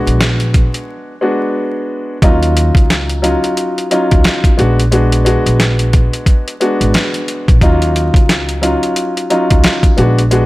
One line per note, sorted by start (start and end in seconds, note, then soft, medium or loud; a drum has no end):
0.00 1.12 G#3 loud
0.00 1.12 B3 medium
0.00 1.12 D4 medium
0.00 1.13 F#4 loud
0.07 0.65 A#1 medium
0.07 closed hi-hat medium
0.21 snare loud
0.21 closed hi-hat medium
0.40 closed hi-hat medium
0.54 kick medium
0.54 closed hi-hat medium
0.74 closed hi-hat medium
1.21 2.16 G#3 medium
1.21 2.16 B3 medium
1.21 2.16 D4 medium
1.21 2.16 F#4 loud
2.22 2.69 D#2 loud
2.22 3.17 F#3 medium
2.22 3.17 C#4 medium
2.22 3.17 D#4 medium
2.22 3.18 F4 loud
2.22 kick loud
2.22 closed hi-hat medium
2.43 closed hi-hat medium
2.57 closed hi-hat medium
2.75 3.34 C#2 medium
2.75 kick loud
2.75 closed hi-hat medium
2.90 snare loud
2.90 closed hi-hat medium
3.09 closed hi-hat medium
3.22 3.86 F#3 medium
3.22 3.86 C#4 medium
3.22 3.86 D#4 medium
3.22 3.86 F4 loud
3.22 closed hi-hat medium
3.44 closed hi-hat medium
3.57 closed hi-hat medium
3.78 closed hi-hat medium
3.91 4.58 F#3 medium
3.91 4.58 C#4 medium
3.91 4.59 D#4 medium
3.91 4.59 F4 loud
3.91 closed hi-hat medium
4.11 4.23 C#2 medium
4.11 kick medium
4.11 closed hi-hat medium
4.24 snare loud
4.24 closed hi-hat medium
4.44 kick loud
4.44 closed hi-hat medium
4.57 5.35 A#1 loud
4.57 4.80 G#3 medium
4.57 4.81 B3 medium
4.57 4.81 D4 medium
4.57 4.81 F#4 loud
4.57 closed hi-hat medium
4.79 closed hi-hat medium
4.91 5.23 G#3 loud
4.91 5.23 B3 medium
4.91 5.24 D4 medium
4.91 5.24 F#4 loud
4.91 closed hi-hat medium
5.12 closed hi-hat medium
5.25 6.51 G#3 loud
5.25 6.51 B3 medium
5.25 6.52 D4 medium
5.25 6.52 F#4 loud
5.25 closed hi-hat medium
5.46 6.05 A#1 medium
5.46 closed hi-hat medium
5.60 snare loud
5.60 closed hi-hat medium
5.79 closed hi-hat medium
5.93 kick medium
5.93 closed hi-hat medium
6.13 closed hi-hat medium
6.26 kick medium
6.26 closed hi-hat medium
6.48 closed hi-hat medium
6.60 7.55 G#3 medium
6.60 7.55 B3 medium
6.60 7.55 D4 medium
6.60 7.56 F#4 loud
6.60 closed hi-hat medium
6.81 6.93 G#1 medium
6.81 closed hi-hat medium
6.94 snare loud
6.94 closed hi-hat loud
7.14 closed hi-hat medium
7.28 closed hi-hat medium
7.48 7.60 A#1 medium
7.48 kick medium
7.48 closed hi-hat medium
7.61 8.08 D#2 loud
7.61 8.56 F#3 medium
7.61 8.56 C#4 medium
7.61 8.57 D#4 medium
7.61 8.57 F4 loud
7.61 kick loud
7.61 closed hi-hat medium
7.82 closed hi-hat medium
7.96 closed hi-hat medium
8.14 8.73 C#2 medium
8.14 kick loud
8.14 closed hi-hat medium
8.29 snare loud
8.29 closed hi-hat medium
8.49 closed hi-hat medium
8.61 9.25 F#3 medium
8.61 9.25 C#4 medium
8.61 9.25 D#4 medium
8.61 9.26 F4 loud
8.61 closed hi-hat medium
8.83 closed hi-hat medium
8.96 closed hi-hat medium
9.17 closed hi-hat medium
9.30 9.97 F#3 medium
9.30 9.98 C#4 medium
9.30 9.98 D#4 medium
9.30 9.98 F4 loud
9.30 closed hi-hat medium
9.50 9.63 C#2 medium
9.50 kick loud
9.50 closed hi-hat medium
9.64 snare loud
9.64 closed hi-hat medium
9.83 kick loud
9.83 closed hi-hat medium
9.97 10.46 A#1 loud
9.97 10.20 G#3 medium
9.97 10.20 B3 medium
9.97 10.20 D4 medium
9.97 10.20 F#4 loud
9.97 closed hi-hat medium
10.18 closed hi-hat medium
10.31 10.46 G#3 loud
10.31 10.46 B3 medium
10.31 10.46 D4 medium
10.31 10.46 F#4 loud
10.31 closed hi-hat medium